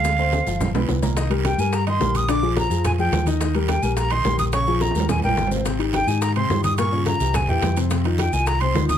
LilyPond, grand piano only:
\new Staff \with { instrumentName = "Grand piano" } { \time 4/4 \key d \phrygian \tempo 4 = 214 <aes aes' aes''>8 <c' c'' c'''>4 <f f' f''>4 <b b' b''>4 <bes bes' bes''>8 | \key c \minor <ees ees' ees''>8 <g g' bes'>4 <g g' bes'>4 <ees ees' ees''>8 <g g' bes'>4 | <d d' d''>8 <f f' aes'>4 <f f' aes'>4 <f f' aes'>4 <ees ees' ees''>8 | <ees ees' ees''>8 <g g' bes'>4 <g g' bes'>4 <ees ees' ees''>8 <g g' bes'>4 |
<des des' des''>8 <f f' aes'>4 <g g' bes'>4 <g g' bes'>4 <c c' c''>8 | <c c' c''>8 <ees ees' g'>4 <ees ees' g'>4 <c c' c''>8 <ees ees' g'>4 | <bes, bes bes'>8 <des des' f'>4 <e e' g'>4 <e e' g'>4 <c c' c''>8 | <c c' c''>8 <ees ees' f'>4 <ees ees' f'>4 <c c' c''>8 <ees ees' f'>4 | }